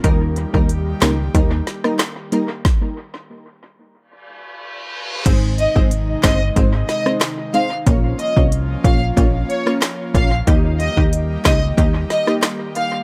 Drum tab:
CC |----------------|----------------|x---------------|----------------|
HH |x-x-x-x-x-x-x-x-|----------------|x-x-x-x-x-x-x-x-|x-x-x-x-x-x-x-x-|
CP |------x-----x---|----------------|------x-----x---|------------x---|
SD |------o---oro---|o---------------|------o---oro---|-----------ro---|
BD |o--o----o-------|o---------------|o--o--o-o-------|o--o--o-o-----o-|

CC |----------------|
HH |x-x-x-x-x-x-x-x-|
CP |------x-----x---|
SD |------o---oro---|
BD |o--o--o-o-------|